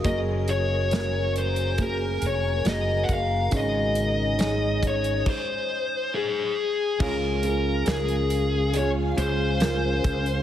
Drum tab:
CC |----------------|--------x-------|x---------------|
HH |x-x-x-xxx-x-x-x-|x-x-x-xx--------|--x-xxx-x-x-x-xx|
SD |----o-------o---|----o-----------|----o-------o---|
BD |o-------o-----o-|o-----o-o-------|o-------------o-|